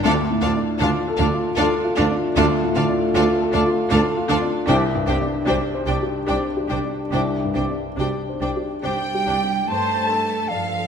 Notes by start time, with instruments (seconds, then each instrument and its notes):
0.03 cello section D2, double bass section D2, grand piano D2, french horn section A3 F4, viola section D4, clarinet F4, violin section A4 F5, oboe D5, flute A5
0.31 grand piano A2
0.41 cello section D2, double bass section D2, viola section D4, clarinet F4, violin section A4 F5, oboe D5, flute A5
0.56 grand piano D4
0.78 double bass section D2, cello section D2, viola section D4, clarinet F4, violin section A4 F5, oboe D5, flute A5
0.83 grand piano F4
1.08 grand piano A4
1.17 double bass section D2, cello section D2, viola section D4, clarinet F4, violin section A4 F5, oboe D5, flute A5
1.34 grand piano F4
1.55 cello section D2, double bass section D2, viola section D4, clarinet F4, violin section A4 F5, oboe D5
1.59 grand piano A4, flute A5
1.84 grand piano F4
1.95 double bass section D2, cello section D2, viola section D4, clarinet F4, violin section A4 F5, oboe D5
1.99 flute A5
2.11 grand piano D4
2.36 cello section D2, double bass section D2, grand piano D2, viola section D4, clarinet F4, violin section A4 F5, oboe D5, flute A5
2.63 grand piano A2
2.75 double bass section D2, cello section D2, viola section D4, clarinet F4, violin section A4 F5, oboe D5, flute A5
2.89 grand piano D4
3.14 cello section D2, double bass section D2, viola section D4, grand piano F4, clarinet F4, violin section A4 F5, oboe D5, flute A5
3.41 grand piano A4
3.53 double bass section D2, cello section D2, viola section D4, clarinet F4, violin section A4 F5, oboe D5, flute A5
3.67 grand piano F4
3.90 cello section D2, double bass section D2, viola section D4, clarinet F4, grand piano A4, violin section A4 F5, oboe D5, flute A5
4.17 grand piano F4
4.29 cello section D2, double bass section D2, viola section D4, clarinet F4, violin section A4 F5, oboe D5, flute A5
4.42 grand piano D4
4.67 cello section C2, double bass section C2, grand piano C2, french horn section G3 D4, viola section D4, clarinet G4, violin section C5 G5, oboe D5, flute G5
4.94 grand piano G2
5.06 cello section C2, double bass section C2, viola section D4, clarinet G4, violin section C5 G5, oboe D5, flute G5
5.21 grand piano D4
5.46 cello section C2, double bass section C2, viola section D4, clarinet G4, grand piano G4, violin section C5 G5, oboe D5, flute G5
5.74 grand piano C5
5.86 cello section C2, double bass section C2, viola section D4, clarinet G4, violin section C5 G5, oboe D5, flute G5
6.03 grand piano G4
6.26 cello section C2, double bass section C2, viola section D4, clarinet G4, violin section C5 G5, grand piano C5, oboe D5, flute G5
6.57 grand piano G4
6.67 cello section C2, double bass section C2, viola section D4, clarinet G4, violin section C5 G5, oboe D5, flute G5
6.85 grand piano D4
7.10 cello section C2, double bass section C2, viola section D4, clarinet G4, violin section C5 G5, oboe D5, flute G5
7.14 grand piano C2
7.44 grand piano G2
7.53 cello section C2, double bass section C2, viola section D4, clarinet G4, violin section C5 G5, oboe D5, flute G5
7.71 grand piano D4
7.97 cello section C2, double bass section C2, viola section D4, clarinet G4, violin section C5 G5, oboe D5, flute G5
8.01 grand piano G4
8.29 grand piano C5
8.40 cello section C2, double bass section C2, viola section D4, clarinet G4, violin section C5 G5, oboe D5, flute G5
8.56 grand piano G4
8.82 cello section C2 G3, double bass section C2, viola section D4, clarinet G4, grand piano C5, violin section C5 G5, oboe D5, flute G5
9.15 grand piano G4
9.25 cello section C2, double bass section C2, viola section D4, clarinet G4, violin section C5 G5, oboe D5
9.44 grand piano D4
9.68 double bass section G2, grand piano G2, cello section A3, viola section C5, flute A5, violin section A5
10.09 grand piano D4, viola section A4, violin section A4
10.48 double bass section G2, cello section F3, viola section A4, grand piano D5, flute F5, violin section F5